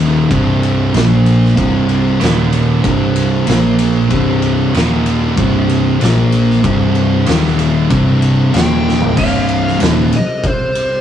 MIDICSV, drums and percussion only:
0, 0, Header, 1, 2, 480
1, 0, Start_track
1, 0, Key_signature, -3, "minor"
1, 0, Tempo, 633580
1, 1188, Time_signature, 4, 2, 24, 8
1, 8340, End_track
2, 0, Start_track
2, 0, Title_t, "Drums"
2, 0, Note_on_c, 9, 51, 76
2, 72, Note_off_c, 9, 51, 0
2, 233, Note_on_c, 9, 36, 115
2, 235, Note_on_c, 9, 51, 95
2, 309, Note_off_c, 9, 36, 0
2, 311, Note_off_c, 9, 51, 0
2, 478, Note_on_c, 9, 51, 69
2, 554, Note_off_c, 9, 51, 0
2, 713, Note_on_c, 9, 51, 96
2, 734, Note_on_c, 9, 38, 127
2, 789, Note_off_c, 9, 51, 0
2, 810, Note_off_c, 9, 38, 0
2, 956, Note_on_c, 9, 51, 74
2, 1032, Note_off_c, 9, 51, 0
2, 1096, Note_on_c, 9, 38, 31
2, 1172, Note_off_c, 9, 38, 0
2, 1192, Note_on_c, 9, 36, 104
2, 1193, Note_on_c, 9, 51, 100
2, 1268, Note_off_c, 9, 36, 0
2, 1269, Note_off_c, 9, 51, 0
2, 1431, Note_on_c, 9, 51, 68
2, 1507, Note_off_c, 9, 51, 0
2, 1673, Note_on_c, 9, 51, 94
2, 1694, Note_on_c, 9, 38, 114
2, 1749, Note_off_c, 9, 51, 0
2, 1770, Note_off_c, 9, 38, 0
2, 1914, Note_on_c, 9, 51, 81
2, 1989, Note_off_c, 9, 51, 0
2, 2152, Note_on_c, 9, 36, 108
2, 2153, Note_on_c, 9, 51, 105
2, 2228, Note_off_c, 9, 36, 0
2, 2229, Note_off_c, 9, 51, 0
2, 2392, Note_on_c, 9, 51, 84
2, 2467, Note_off_c, 9, 51, 0
2, 2627, Note_on_c, 9, 51, 102
2, 2648, Note_on_c, 9, 38, 118
2, 2703, Note_off_c, 9, 51, 0
2, 2724, Note_off_c, 9, 38, 0
2, 2869, Note_on_c, 9, 51, 87
2, 2945, Note_off_c, 9, 51, 0
2, 3109, Note_on_c, 9, 51, 103
2, 3112, Note_on_c, 9, 36, 95
2, 3184, Note_off_c, 9, 51, 0
2, 3188, Note_off_c, 9, 36, 0
2, 3350, Note_on_c, 9, 51, 68
2, 3425, Note_off_c, 9, 51, 0
2, 3594, Note_on_c, 9, 51, 96
2, 3615, Note_on_c, 9, 38, 111
2, 3670, Note_off_c, 9, 51, 0
2, 3691, Note_off_c, 9, 38, 0
2, 3833, Note_on_c, 9, 51, 82
2, 3909, Note_off_c, 9, 51, 0
2, 4071, Note_on_c, 9, 51, 109
2, 4072, Note_on_c, 9, 36, 113
2, 4146, Note_off_c, 9, 51, 0
2, 4148, Note_off_c, 9, 36, 0
2, 4314, Note_on_c, 9, 51, 73
2, 4390, Note_off_c, 9, 51, 0
2, 4553, Note_on_c, 9, 51, 102
2, 4574, Note_on_c, 9, 38, 122
2, 4629, Note_off_c, 9, 51, 0
2, 4650, Note_off_c, 9, 38, 0
2, 4790, Note_on_c, 9, 51, 75
2, 4866, Note_off_c, 9, 51, 0
2, 4928, Note_on_c, 9, 38, 29
2, 5003, Note_off_c, 9, 38, 0
2, 5030, Note_on_c, 9, 51, 95
2, 5031, Note_on_c, 9, 36, 109
2, 5106, Note_off_c, 9, 51, 0
2, 5107, Note_off_c, 9, 36, 0
2, 5266, Note_on_c, 9, 51, 61
2, 5342, Note_off_c, 9, 51, 0
2, 5503, Note_on_c, 9, 51, 107
2, 5525, Note_on_c, 9, 38, 111
2, 5579, Note_off_c, 9, 51, 0
2, 5600, Note_off_c, 9, 38, 0
2, 5651, Note_on_c, 9, 38, 32
2, 5727, Note_off_c, 9, 38, 0
2, 5748, Note_on_c, 9, 51, 78
2, 5824, Note_off_c, 9, 51, 0
2, 5987, Note_on_c, 9, 51, 105
2, 5989, Note_on_c, 9, 36, 113
2, 6063, Note_off_c, 9, 51, 0
2, 6065, Note_off_c, 9, 36, 0
2, 6228, Note_on_c, 9, 51, 84
2, 6304, Note_off_c, 9, 51, 0
2, 6469, Note_on_c, 9, 51, 112
2, 6490, Note_on_c, 9, 38, 125
2, 6545, Note_off_c, 9, 51, 0
2, 6566, Note_off_c, 9, 38, 0
2, 6733, Note_on_c, 9, 38, 65
2, 6808, Note_off_c, 9, 38, 0
2, 6825, Note_on_c, 9, 43, 81
2, 6901, Note_off_c, 9, 43, 0
2, 6948, Note_on_c, 9, 36, 106
2, 6948, Note_on_c, 9, 49, 127
2, 7023, Note_off_c, 9, 49, 0
2, 7024, Note_off_c, 9, 36, 0
2, 7187, Note_on_c, 9, 51, 69
2, 7263, Note_off_c, 9, 51, 0
2, 7328, Note_on_c, 9, 38, 33
2, 7404, Note_off_c, 9, 38, 0
2, 7425, Note_on_c, 9, 51, 108
2, 7446, Note_on_c, 9, 38, 121
2, 7501, Note_off_c, 9, 51, 0
2, 7522, Note_off_c, 9, 38, 0
2, 7671, Note_on_c, 9, 51, 82
2, 7746, Note_off_c, 9, 51, 0
2, 7907, Note_on_c, 9, 36, 115
2, 7908, Note_on_c, 9, 51, 94
2, 7982, Note_off_c, 9, 36, 0
2, 7984, Note_off_c, 9, 51, 0
2, 8147, Note_on_c, 9, 51, 80
2, 8223, Note_off_c, 9, 51, 0
2, 8340, End_track
0, 0, End_of_file